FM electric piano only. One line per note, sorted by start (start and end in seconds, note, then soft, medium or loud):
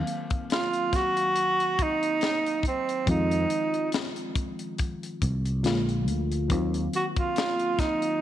0.00 3.01 D#3 medium
0.00 3.02 F#3 medium
0.00 3.02 A#3 medium
0.00 3.03 C4 medium
0.00 3.07 F5 medium
3.06 5.59 D#3 soft
3.06 5.60 F3 soft
3.06 5.60 G#3 soft
3.06 5.61 C4 soft
3.10 5.61 F4 medium
5.63 6.49 D3 medium
5.63 6.49 F3 medium
5.63 6.49 G#3 medium
5.63 6.49 A#3 medium
5.63 6.50 F4 medium
6.48 8.21 D#3 medium
6.48 8.21 F#3 medium
6.48 8.21 A#3 medium
6.48 8.21 C4 medium
6.53 8.21 F4 medium